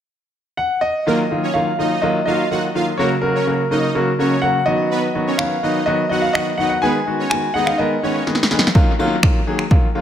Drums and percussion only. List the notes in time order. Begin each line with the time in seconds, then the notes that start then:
5.39 finger snap
6.35 finger snap
7.31 finger snap
7.67 finger snap
8.27 snare
8.35 snare
8.43 snare
8.51 snare
8.59 snare
8.67 snare
8.75 kick
9.23 finger snap, kick
9.59 finger snap
9.71 kick